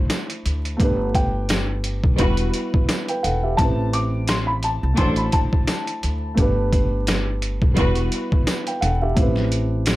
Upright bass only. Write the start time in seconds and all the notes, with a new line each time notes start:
0.46 D2
0.80 G1
2.04 B1
2.19 E1
3.24 E1
3.59 A1
4.83 C2
4.98 A1
6.04 D2
6.38 G1
7.62 B1
7.77 E1
8.82 E1
9.17 A1